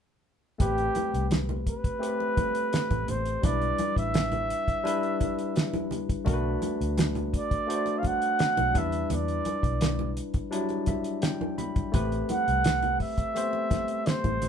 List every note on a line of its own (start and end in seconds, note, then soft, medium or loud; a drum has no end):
0.58 0.88 A1 medium
0.58 1.76 A3 medium
0.58 1.77 C4 medium
0.58 1.77 G4 medium
0.58 1.27 G4 loud
0.58 1.78 B4 medium
0.58 kick loud
0.58 closed hi-hat medium
0.58 low conga medium
0.78 closed hi-hat soft
0.78 muted conga soft
0.95 closed hi-hat medium
0.95 high conga medium
1.14 1.68 C2 medium
1.14 closed hi-hat soft
1.31 snare medium
1.31 closed hi-hat medium
1.31 muted conga soft
1.31 high conga medium
1.49 muted conga soft
1.49 high conga soft
1.49 low conga medium
1.67 3.12 B4 medium
1.67 kick medium
1.67 closed hi-hat medium
1.84 kick medium
1.84 closed hi-hat soft
1.99 3.18 A3 medium
1.99 3.18 C4 medium
1.99 3.19 G4 medium
1.99 2.09 A4 medium
1.99 closed hi-hat medium
2.08 3.22 B4 medium
2.20 muted conga soft
2.37 kick medium
2.37 closed hi-hat medium
2.37 high conga medium
2.55 closed hi-hat soft
2.73 snare medium
2.73 closed hi-hat medium
2.73 muted conga soft
2.91 3.04 A1 medium
2.91 kick medium
2.91 closed hi-hat soft
2.91 muted conga soft
2.91 high conga medium
3.08 3.36 A1 medium
3.08 3.46 C5 medium
3.08 closed hi-hat medium
3.08 low conga medium
3.25 closed hi-hat soft
3.42 3.71 B1 medium
3.42 4.60 G3 medium
3.42 4.60 D4 medium
3.42 4.61 E4 medium
3.42 4.61 B4 medium
3.42 3.97 D5 loud
3.42 kick loud
3.42 closed hi-hat medium
3.42 muted conga soft
3.42 low conga medium
3.62 closed hi-hat soft
3.78 closed hi-hat medium
3.78 high conga medium
3.96 4.51 A1 medium
3.96 5.88 E5 loud
3.96 kick medium
3.96 closed hi-hat soft
4.14 snare loud
4.14 closed hi-hat medium
4.14 muted conga soft
4.14 high conga medium
4.32 closed hi-hat soft
4.32 muted conga soft
4.32 high conga soft
4.32 low conga medium
4.50 closed hi-hat medium
4.68 kick medium
4.68 closed hi-hat soft
4.83 6.01 G3 medium
4.83 6.02 D4 medium
4.83 6.02 E4 medium
4.83 6.03 B4 medium
4.83 closed hi-hat medium
4.83 muted conga soft
5.03 closed hi-hat soft
5.20 kick medium
5.20 closed hi-hat medium
5.20 high conga medium
5.39 closed hi-hat soft
5.56 snare medium
5.56 closed hi-hat medium
5.56 muted conga soft
5.74 closed hi-hat soft
5.74 muted conga soft
5.74 high conga medium
5.91 closed hi-hat medium
5.91 low conga medium
6.09 kick medium
6.09 closed hi-hat soft
6.24 6.55 B1 medium
6.24 7.43 A3 medium
6.24 7.43 D4 medium
6.24 7.44 F#4 medium
6.24 6.33 A#4 medium
6.24 kick loud
6.24 closed hi-hat medium
6.24 muted conga soft
6.24 low conga medium
6.34 7.47 B4 medium
6.62 closed hi-hat medium
6.62 high conga medium
6.81 7.35 D2 medium
6.81 closed hi-hat soft
6.97 snare loud
6.97 closed hi-hat medium
6.97 muted conga soft
6.97 high conga medium
7.15 closed hi-hat soft
7.15 muted conga soft
7.15 high conga soft
7.15 low conga medium
7.34 8.00 D5 medium
7.34 kick medium
7.34 closed hi-hat medium
7.51 kick medium
7.51 closed hi-hat soft
7.67 8.74 A3 medium
7.67 8.73 D4 medium
7.67 8.75 F#4 medium
7.67 7.76 C5 medium
7.67 closed hi-hat medium
7.76 8.78 D5 medium
7.86 closed hi-hat soft
7.86 muted conga soft
7.99 8.08 F5 medium
8.03 8.80 F#5 loud
8.03 kick medium
8.03 closed hi-hat medium
8.03 high conga medium
8.22 closed hi-hat soft
8.39 snare medium
8.39 closed hi-hat medium
8.39 muted conga soft
8.57 8.71 B1 medium
8.57 closed hi-hat soft
8.57 muted conga soft
8.57 high conga medium
8.73 9.03 E2 medium
8.73 9.91 G3 medium
8.73 9.92 D4 medium
8.73 9.92 E4 medium
8.73 9.93 B4 medium
8.73 kick medium
8.73 closed hi-hat medium
8.73 low conga medium
8.78 9.12 E5 medium
8.92 closed hi-hat soft
9.10 9.38 E2 medium
9.10 10.14 D5 medium
9.10 closed hi-hat medium
9.10 muted conga soft
9.10 low conga medium
9.28 closed hi-hat soft
9.45 closed hi-hat medium
9.45 high conga medium
9.63 10.18 B1 medium
9.63 kick medium
9.63 closed hi-hat soft
9.81 snare medium
9.81 closed hi-hat medium
9.81 muted conga soft
9.81 high conga medium
9.99 muted conga soft
9.99 high conga soft
9.99 low conga medium
10.17 closed hi-hat medium
10.34 kick medium
10.34 closed hi-hat soft
10.50 11.70 F#3 medium
10.50 11.69 G3 medium
10.50 11.69 D4 medium
10.50 11.70 E4 medium
10.50 closed hi-hat medium
10.69 closed hi-hat soft
10.69 muted conga soft
10.86 11.21 E5 medium
10.86 kick medium
10.86 closed hi-hat medium
10.86 high conga medium
11.04 closed hi-hat soft
11.22 11.56 G5 medium
11.22 snare medium
11.22 closed hi-hat medium
11.22 muted conga soft
11.41 high conga medium
11.58 11.91 B5 medium
11.58 closed hi-hat medium
11.58 low conga medium
11.76 kick medium
11.76 closed hi-hat soft
11.92 12.21 A1 medium
11.92 13.10 A3 medium
11.92 13.11 C4 medium
11.92 13.11 G4 medium
11.92 13.12 B4 medium
11.92 kick loud
11.92 closed hi-hat medium
11.92 low conga medium
12.12 closed hi-hat soft
12.29 12.97 F#5 medium
12.29 closed hi-hat medium
12.29 high conga medium
12.48 13.02 C2 medium
12.48 closed hi-hat soft
12.64 snare medium
12.64 closed hi-hat medium
12.64 muted conga soft
12.64 high conga medium
12.83 closed hi-hat soft
12.83 muted conga soft
12.83 high conga soft
12.83 low conga medium
13.00 14.09 E5 medium
13.00 kick medium
13.00 open hi-hat soft
13.18 kick medium
13.18 closed hi-hat soft
13.35 14.48 A3 medium
13.35 13.42 B3 medium
13.35 14.48 G4 medium
13.35 14.48 C5 medium
13.35 closed hi-hat medium
13.35 muted conga soft
13.42 14.48 C4 medium
13.53 muted conga soft
13.71 kick medium
13.71 snare soft
13.71 closed hi-hat medium
13.71 high conga medium
13.88 closed hi-hat soft
14.06 14.48 C5 medium
14.06 snare medium
14.06 closed hi-hat medium
14.06 muted conga soft
14.24 14.38 A1 medium
14.24 kick medium
14.24 closed hi-hat soft
14.24 muted conga soft
14.24 high conga medium
14.42 14.48 A1 medium
14.42 closed hi-hat medium
14.42 low conga medium